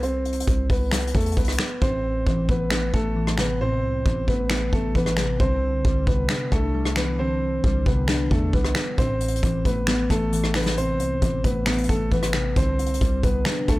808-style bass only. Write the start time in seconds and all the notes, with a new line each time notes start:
Already playing: C2
0.48 C2
0.70 C2
1.15 E2
1.37 C2
1.82 A1
2.27 A1
2.49 A1
2.94 A1
3.83 C2
4.06 A1
4.28 A1
4.73 A1
4.95 A1
5.40 C2
5.85 C2
6.07 C2
6.52 C2
7.64 C2
7.86 C2
8.31 E2
8.53 C2
8.98 A1
9.43 A1
9.65 A1
10.10 A1
11.00 C2
11.22 A1
11.44 A1
11.89 A1
12.12 A1
12.56 C2
13.01 C2
13.23 C2
13.68 C2